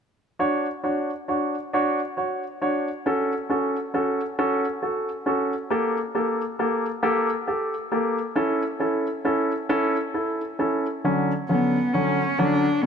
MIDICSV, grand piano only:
0, 0, Header, 1, 2, 480
1, 0, Start_track
1, 0, Key_signature, 2, "major"
1, 0, Tempo, 886263
1, 211, Time_signature, 6, 3, 24, 8
1, 4530, Tempo, 894188
1, 6943, End_track
2, 0, Start_track
2, 0, Title_t, "Grand piano"
2, 0, Program_c, 0, 0
2, 213, Note_on_c, 0, 62, 51
2, 213, Note_on_c, 0, 66, 43
2, 216, Note_on_c, 0, 73, 57
2, 353, Note_off_c, 0, 66, 0
2, 354, Note_off_c, 0, 62, 0
2, 355, Note_off_c, 0, 73, 0
2, 452, Note_on_c, 0, 62, 42
2, 453, Note_on_c, 0, 66, 38
2, 455, Note_on_c, 0, 73, 46
2, 593, Note_off_c, 0, 62, 0
2, 594, Note_off_c, 0, 66, 0
2, 595, Note_off_c, 0, 73, 0
2, 694, Note_on_c, 0, 62, 46
2, 695, Note_on_c, 0, 66, 38
2, 698, Note_on_c, 0, 73, 47
2, 834, Note_off_c, 0, 62, 0
2, 835, Note_off_c, 0, 66, 0
2, 836, Note_off_c, 0, 73, 0
2, 939, Note_on_c, 0, 62, 61
2, 941, Note_on_c, 0, 66, 53
2, 943, Note_on_c, 0, 73, 59
2, 1077, Note_off_c, 0, 62, 0
2, 1077, Note_off_c, 0, 66, 0
2, 1079, Note_off_c, 0, 73, 0
2, 1175, Note_on_c, 0, 66, 40
2, 1178, Note_on_c, 0, 73, 43
2, 1315, Note_off_c, 0, 66, 0
2, 1316, Note_off_c, 0, 73, 0
2, 1416, Note_on_c, 0, 62, 45
2, 1417, Note_on_c, 0, 66, 38
2, 1419, Note_on_c, 0, 73, 51
2, 1556, Note_off_c, 0, 62, 0
2, 1556, Note_off_c, 0, 66, 0
2, 1557, Note_off_c, 0, 73, 0
2, 1657, Note_on_c, 0, 61, 54
2, 1658, Note_on_c, 0, 66, 47
2, 1661, Note_on_c, 0, 69, 60
2, 1796, Note_off_c, 0, 61, 0
2, 1797, Note_off_c, 0, 66, 0
2, 1798, Note_off_c, 0, 69, 0
2, 1893, Note_on_c, 0, 61, 44
2, 1894, Note_on_c, 0, 66, 38
2, 1898, Note_on_c, 0, 69, 48
2, 2034, Note_off_c, 0, 61, 0
2, 2035, Note_off_c, 0, 66, 0
2, 2037, Note_off_c, 0, 69, 0
2, 2133, Note_on_c, 0, 61, 42
2, 2135, Note_on_c, 0, 66, 41
2, 2136, Note_on_c, 0, 69, 51
2, 2274, Note_off_c, 0, 61, 0
2, 2275, Note_off_c, 0, 66, 0
2, 2275, Note_off_c, 0, 69, 0
2, 2376, Note_on_c, 0, 61, 62
2, 2376, Note_on_c, 0, 66, 56
2, 2377, Note_on_c, 0, 69, 65
2, 2514, Note_off_c, 0, 61, 0
2, 2515, Note_off_c, 0, 66, 0
2, 2515, Note_off_c, 0, 69, 0
2, 2611, Note_on_c, 0, 66, 41
2, 2614, Note_on_c, 0, 69, 43
2, 2752, Note_off_c, 0, 66, 0
2, 2753, Note_off_c, 0, 69, 0
2, 2848, Note_on_c, 0, 61, 47
2, 2851, Note_on_c, 0, 66, 45
2, 2853, Note_on_c, 0, 69, 52
2, 2990, Note_off_c, 0, 61, 0
2, 2991, Note_off_c, 0, 66, 0
2, 2992, Note_off_c, 0, 69, 0
2, 3089, Note_on_c, 0, 58, 56
2, 3091, Note_on_c, 0, 67, 51
2, 3094, Note_on_c, 0, 69, 64
2, 3231, Note_off_c, 0, 58, 0
2, 3231, Note_off_c, 0, 67, 0
2, 3233, Note_off_c, 0, 69, 0
2, 3329, Note_on_c, 0, 58, 46
2, 3330, Note_on_c, 0, 67, 39
2, 3332, Note_on_c, 0, 69, 53
2, 3470, Note_off_c, 0, 58, 0
2, 3471, Note_off_c, 0, 67, 0
2, 3472, Note_off_c, 0, 69, 0
2, 3570, Note_on_c, 0, 58, 53
2, 3572, Note_on_c, 0, 67, 43
2, 3573, Note_on_c, 0, 69, 55
2, 3710, Note_off_c, 0, 58, 0
2, 3711, Note_off_c, 0, 67, 0
2, 3712, Note_off_c, 0, 69, 0
2, 3806, Note_on_c, 0, 58, 62
2, 3806, Note_on_c, 0, 67, 61
2, 3808, Note_on_c, 0, 69, 72
2, 3947, Note_off_c, 0, 58, 0
2, 3948, Note_off_c, 0, 67, 0
2, 3949, Note_off_c, 0, 69, 0
2, 4048, Note_on_c, 0, 67, 44
2, 4050, Note_on_c, 0, 69, 50
2, 4188, Note_off_c, 0, 67, 0
2, 4189, Note_off_c, 0, 69, 0
2, 4287, Note_on_c, 0, 58, 49
2, 4289, Note_on_c, 0, 69, 49
2, 4291, Note_on_c, 0, 67, 46
2, 4428, Note_off_c, 0, 58, 0
2, 4429, Note_off_c, 0, 69, 0
2, 4430, Note_off_c, 0, 67, 0
2, 4525, Note_on_c, 0, 61, 55
2, 4528, Note_on_c, 0, 64, 53
2, 4528, Note_on_c, 0, 69, 63
2, 4666, Note_off_c, 0, 61, 0
2, 4667, Note_off_c, 0, 64, 0
2, 4667, Note_off_c, 0, 69, 0
2, 4762, Note_on_c, 0, 61, 43
2, 4765, Note_on_c, 0, 64, 42
2, 4766, Note_on_c, 0, 69, 55
2, 4904, Note_off_c, 0, 61, 0
2, 4905, Note_off_c, 0, 64, 0
2, 4906, Note_off_c, 0, 69, 0
2, 5004, Note_on_c, 0, 61, 53
2, 5006, Note_on_c, 0, 64, 47
2, 5007, Note_on_c, 0, 69, 57
2, 5144, Note_off_c, 0, 61, 0
2, 5146, Note_off_c, 0, 64, 0
2, 5146, Note_off_c, 0, 69, 0
2, 5243, Note_on_c, 0, 61, 71
2, 5244, Note_on_c, 0, 64, 64
2, 5246, Note_on_c, 0, 69, 76
2, 5385, Note_off_c, 0, 61, 0
2, 5385, Note_off_c, 0, 64, 0
2, 5386, Note_off_c, 0, 69, 0
2, 5484, Note_on_c, 0, 64, 44
2, 5486, Note_on_c, 0, 69, 47
2, 5626, Note_off_c, 0, 64, 0
2, 5626, Note_off_c, 0, 69, 0
2, 5724, Note_on_c, 0, 61, 50
2, 5727, Note_on_c, 0, 64, 48
2, 5727, Note_on_c, 0, 69, 58
2, 5867, Note_off_c, 0, 61, 0
2, 5868, Note_off_c, 0, 64, 0
2, 5868, Note_off_c, 0, 69, 0
2, 5969, Note_on_c, 0, 50, 51
2, 5969, Note_on_c, 0, 54, 47
2, 5971, Note_on_c, 0, 61, 61
2, 6110, Note_off_c, 0, 50, 0
2, 6110, Note_off_c, 0, 54, 0
2, 6111, Note_off_c, 0, 61, 0
2, 6209, Note_on_c, 0, 50, 44
2, 6211, Note_on_c, 0, 54, 40
2, 6213, Note_on_c, 0, 61, 49
2, 6350, Note_off_c, 0, 50, 0
2, 6351, Note_off_c, 0, 54, 0
2, 6352, Note_off_c, 0, 61, 0
2, 6451, Note_on_c, 0, 50, 46
2, 6452, Note_on_c, 0, 54, 44
2, 6455, Note_on_c, 0, 61, 50
2, 6590, Note_off_c, 0, 50, 0
2, 6591, Note_off_c, 0, 54, 0
2, 6592, Note_off_c, 0, 61, 0
2, 6689, Note_on_c, 0, 50, 59
2, 6691, Note_on_c, 0, 54, 55
2, 6692, Note_on_c, 0, 61, 69
2, 6828, Note_off_c, 0, 50, 0
2, 6829, Note_off_c, 0, 54, 0
2, 6829, Note_off_c, 0, 61, 0
2, 6943, End_track
0, 0, End_of_file